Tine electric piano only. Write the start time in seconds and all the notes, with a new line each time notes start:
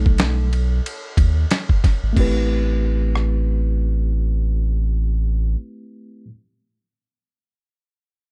Already playing: G3 A3 D#4 A4
2.13 A3 C4 E4
2.18 G4 B4